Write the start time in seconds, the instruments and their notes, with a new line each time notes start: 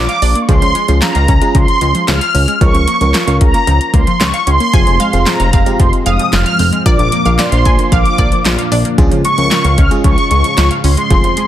Already playing: analog polysynth D6
0.09 synth arpeggio sound F5, closed hi-hat
0.22 analog synth bass A#1, synth arpeggio sound D4, synth pluck D5, open hi-hat
0.35 synth arpeggio sound A#3, closed hi-hat
0.42 analog polysynth C#6
0.49 analog synth bass C#2, synth arpeggio sound F3, fm electric piano C#4 F4 G#4, analog polysynth C6, kick, closed hi-hat
0.62 analog synth bass C#2, synth arpeggio sound F3, closed hi-hat
0.75 synth arpeggio sound G#3, closed hi-hat
0.88 analog synth bass C#2, synth arpeggio sound F3, fm electric piano C#4 F4 G#4, closed hi-hat
1.02 synth arpeggio sound F4, analog polysynth A#5, snare, clap, closed hi-hat
1.15 analog synth bass C#2, synth arpeggio sound F5, closed hi-hat
1.28 analog synth bass C#2, synth arpeggio sound C#4, kick, closed hi-hat
1.42 synth arpeggio sound G#3, fm electric piano C#4 F4 G#4, closed hi-hat
1.55 analog synth bass C#2, synth arpeggio sound F3, analog polysynth C6, kick, closed hi-hat
1.68 closed hi-hat
1.81 analog synth bass C#2, synth arpeggio sound G#3, closed hi-hat
1.95 synth arpeggio sound F3, closed hi-hat
2.08 analog synth bass C#2, synth arpeggio sound F4, analog polysynth F6, snare, clap, closed hi-hat
2.21 synth arpeggio sound F5, closed hi-hat
2.35 analog synth bass C#2, synth arpeggio sound C#4, open hi-hat
2.48 synth arpeggio sound G#3, closed hi-hat
2.61 analog synth bass C#2, synth arpeggio sound F3, fm electric piano C#4 F4 A#4, analog polysynth C#6, kick, closed hi-hat
2.74 analog synth bass C#2, synth arpeggio sound F3, closed hi-hat
2.88 synth arpeggio sound A#3, closed hi-hat
3.01 analog synth bass C#2, synth arpeggio sound F3, fm electric piano C#4 F4 A#4, closed hi-hat
3.14 synth arpeggio sound F4, snare, clap, closed hi-hat
3.27 analog synth bass C#2, fm electric piano C#4 F4 A#4, synth arpeggio sound F5, closed hi-hat
3.41 analog synth bass C#2, synth arpeggio sound C#4, analog polysynth A#5, kick, closed hi-hat
3.54 synth arpeggio sound A#3, closed hi-hat
3.67 analog synth bass C#2, synth arpeggio sound F3, closed hi-hat
3.81 closed hi-hat
3.94 analog synth bass C#2, synth arpeggio sound A#3, analog polysynth C6, kick, closed hi-hat
4.07 synth arpeggio sound F3, closed hi-hat
4.20 analog synth bass C#2, synth arpeggio sound F4, analog polysynth C#6, snare, clap, closed hi-hat
4.34 synth arpeggio sound F5, closed hi-hat
4.47 analog synth bass C#2, synth arpeggio sound C#4, analog polysynth C6, closed hi-hat
4.60 synth arpeggio sound A#3, closed hi-hat
4.73 analog synth bass F1, synth arpeggio sound F3, string machine F3 G#3 C4, fm electric piano C4 F4 G#4, synth pluck G#5, kick, closed hi-hat
4.87 analog synth bass F1, synth arpeggio sound F3, closed hi-hat
5.00 synth arpeggio sound G#3, synth pluck F5, closed hi-hat
5.13 analog synth bass F1, synth arpeggio sound F3, fm electric piano C4 F4 G#4, closed hi-hat
5.26 synth arpeggio sound F4, analog polysynth A#5, snare, clap, closed hi-hat
5.40 analog synth bass F1, synth arpeggio sound F5, closed hi-hat
5.53 analog synth bass F1, synth arpeggio sound C4, synth pluck F5, kick, closed hi-hat
5.66 synth arpeggio sound G#3, fm electric piano C4 F4 G4, closed hi-hat
5.80 analog synth bass F1, synth arpeggio sound F3, analog polysynth C6, kick, closed hi-hat
5.93 closed hi-hat
6.06 analog synth bass F1, synth arpeggio sound G#3, synth pluck F5, analog polysynth D#6, closed hi-hat
6.19 synth arpeggio sound F3, closed hi-hat
6.33 analog synth bass F1, synth arpeggio sound F4, analog polysynth F6, snare, clap, closed hi-hat
6.46 synth arpeggio sound F5, closed hi-hat
6.59 analog synth bass F1, synth arpeggio sound C4, open hi-hat
6.73 synth arpeggio sound G#3, closed hi-hat
6.86 analog synth bass A#1, synth arpeggio sound F3, string machine A#3 D4, fm electric piano D4 F4 A#4, synth pluck D5, analog polysynth D6, kick, closed hi-hat
6.99 analog synth bass A#1, synth arpeggio sound F3, closed hi-hat
7.12 synth arpeggio sound A#3, closed hi-hat
7.26 analog synth bass A#1, synth arpeggio sound F3, fm electric piano D4 F4 A#4, synth pluck F5, closed hi-hat
7.39 synth arpeggio sound F4, synth pluck D5, analog polysynth C6, snare, clap, closed hi-hat
7.52 analog synth bass A#1, fm electric piano D4 F4 C5, synth arpeggio sound F5, closed hi-hat
7.65 analog synth bass A#1, synth arpeggio sound D4, synth pluck G#5, kick, closed hi-hat
7.79 synth arpeggio sound A#3, closed hi-hat
7.92 analog synth bass A#1, synth arpeggio sound F3, synth pluck F5, analog polysynth D6, kick, closed hi-hat
8.06 closed hi-hat
8.18 analog synth bass A#1, synth arpeggio sound A#3, synth pluck D5, kick, closed hi-hat
8.32 synth arpeggio sound F3, closed hi-hat
8.45 analog synth bass A#1, synth arpeggio sound F4, snare, clap, closed hi-hat
8.58 synth arpeggio sound F5, closed hi-hat
8.72 analog synth bass A#1, synth arpeggio sound D4, synth pluck D5, open hi-hat
8.85 synth arpeggio sound A#3, closed hi-hat
8.98 analog synth bass C#2, string machine C#3 G#3 F4, synth arpeggio sound F3, fm electric piano C#4 F4 G#4, kick, closed hi-hat
9.12 analog synth bass C#2, synth arpeggio sound F3, closed hi-hat
9.25 synth arpeggio sound G#3, analog polysynth C#6, closed hi-hat
9.38 analog synth bass C#2, synth arpeggio sound F3, fm electric piano C#4 F4 A#4, closed hi-hat
9.51 synth arpeggio sound F4, snare, clap, closed hi-hat
9.65 analog synth bass C#2, synth arpeggio sound F5, closed hi-hat
9.78 analog synth bass C#2, synth arpeggio sound C#4, analog polysynth F6, kick, closed hi-hat
9.91 synth arpeggio sound G#3, fm electric piano C#4 F4 G#4, closed hi-hat
10.04 analog synth bass C#2, synth arpeggio sound F3, analog polysynth C#6, kick, closed hi-hat
10.18 closed hi-hat
10.31 analog synth bass C#2, synth arpeggio sound G#3, analog polysynth C#6, closed hi-hat
10.44 synth arpeggio sound F3, closed hi-hat
10.57 analog synth bass C#2, synth arpeggio sound F4, analog polysynth C#6, snare, clap, closed hi-hat
10.71 synth arpeggio sound F5, closed hi-hat
10.84 analog synth bass C#2, synth arpeggio sound C#4, analog polysynth C6, open hi-hat
10.97 synth arpeggio sound G#3, closed hi-hat
11.10 analog synth bass F1, string machine F3 C4 G#4, synth arpeggio sound F3, fm electric piano C4 F4 G#4, kick, closed hi-hat
11.24 analog synth bass F1, synth arpeggio sound F3, closed hi-hat
11.37 synth arpeggio sound G#3, closed hi-hat